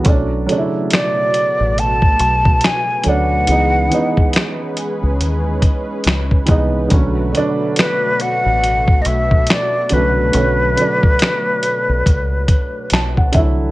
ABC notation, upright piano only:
X:1
M:4/4
L:1/16
Q:"Swing 16ths" 1/4=70
K:Bdor
V:1 name="Upright piano"
[F,A,CD]2 [C,F,A,DE]6 z6 [F,A,CD]2 | [E,G,B,^D]2 [E,G,B,D]6 z6 [E,G,B,D]2 | [D,F,A,C]2 [D,F,A,D]6 z6 [D,F,A,C]2 | [D,F,A,C]2 [D,F,A,D]6 z4 a f [D,F,A,Ee]2 |]